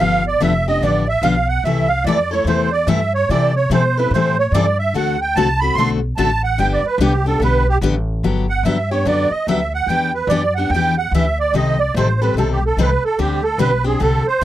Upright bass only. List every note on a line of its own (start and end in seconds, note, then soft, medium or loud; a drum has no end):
0.00 0.40 G1 medium
0.41 0.81 F1 medium
0.81 1.21 A1 medium
1.22 1.62 B1 medium
1.64 2.04 C2 medium
2.04 2.44 F2 medium
2.45 2.86 E2 medium
2.87 3.27 G2 medium
3.29 3.69 C3 medium
3.70 4.10 B2 medium
4.11 4.51 A2 medium
4.52 4.92 G2 medium
4.94 5.34 D2 medium
5.36 5.75 C2 medium
5.75 6.16 B1 medium
6.17 6.58 A1 medium
6.59 6.83 G1 medium
6.83 muted upright bass stroke soft
6.98 7.39 C2 loud
7.40 7.80 B1 medium
7.81 8.22 A1 medium
8.23 8.63 G1 medium
8.63 9.04 G2 medium
9.06 9.30 F#2 medium
9.31 muted upright bass stroke soft
9.47 9.86 D2 medium
9.87 10.27 E2 medium
10.27 10.69 F#2 medium
10.70 11.10 E2 medium
11.11 11.52 D2 medium
11.53 11.93 C2 medium
11.94 12.33 A1 loud
12.34 12.75 B1 medium
12.77 13.01 C2 medium
13.19 13.58 D2 medium
13.58 13.99 B1 medium
14.01 14.24 C2 medium